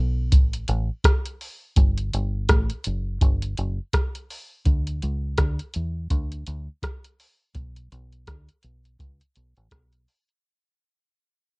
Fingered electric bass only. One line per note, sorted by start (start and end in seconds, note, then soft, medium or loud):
0.00 0.33 B1 medium
0.33 0.66 A1 loud
0.69 0.88 A1 medium
1.77 2.10 G1 loud
2.14 2.47 G1 loud
2.50 2.69 A1 loud
2.86 3.19 F#1 medium
3.22 3.55 G1 loud
3.58 3.78 F#1 medium
4.66 5.00 D2 loud
5.03 5.36 C#2 medium
5.39 5.58 D2 loud
5.76 6.09 E2 medium
6.11 6.44 D2 loud
6.48 6.67 D2 medium
7.55 7.89 B1 loud
7.92 8.25 B1 loud
8.28 8.47 D2 medium
8.64 8.97 B1 medium
9.00 9.19 C#2 medium
9.37 9.56 B1 medium
9.57 9.71 A1 medium
9.72 10.05 B1 medium